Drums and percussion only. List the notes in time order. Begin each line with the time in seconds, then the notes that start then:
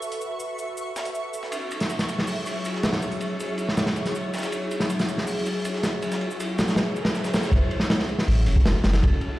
0.02 shaker
0.12 closed hi-hat
0.21 shaker
0.40 shaker
0.58 shaker
0.77 shaker
0.96 snare, shaker
1.05 closed hi-hat
1.15 shaker
1.33 shaker
1.43 snare
1.52 ride, shaker
1.71 ride, shaker
1.80 snare, closed hi-hat
1.90 ride, shaker
1.99 snare, closed hi-hat
2.09 ride, shaker
2.19 snare
2.27 open hi-hat, shaker
2.46 ride, shaker
2.65 ride, shaker
2.74 snare
2.83 snare, ride, shaker
2.93 snare, ride
3.02 ride, shaker
3.12 closed hi-hat
3.21 ride, shaker
3.40 ride, shaker
3.58 ride, shaker
3.69 snare
3.77 snare, ride, shaker
3.86 snare, ride
3.96 ride, shaker
4.05 snare, closed hi-hat
4.15 ride, shaker
4.34 snare, ride, shaker
4.38 snare, shaker
4.43 snare, ride, shaker
4.52 ride, shaker
4.71 ride, shaker
4.80 snare, closed hi-hat
4.90 ride, shaker
4.99 snare, closed hi-hat
5.08 ride, shaker
5.18 snare
5.27 open hi-hat, shaker
5.46 ride, shaker
5.65 ride, shaker
5.74 snare
5.83 snare, ride, shaker
6.02 ride, shaker
6.12 snare, shaker
6.21 ride
6.31 shaker
6.40 ride, shaker
6.59 snare, ride, shaker
6.68 snare, shaker
6.76 snare, ride, shaker
6.96 ride, shaker
7.05 snare, ride
7.15 snare, shaker
7.24 snare, ride, shaker
7.34 snare, ride, shaker
7.43 snare, shaker
7.52 kick, ride
7.71 ride
7.80 snare
7.90 snare, ride
7.99 snare
8.09 ride
8.18 snare
8.28 open hi-hat
8.46 ride
8.56 kick
8.66 snare, ride
8.84 snare, ride
8.93 snare, ride
9.03 kick, ride
9.21 ride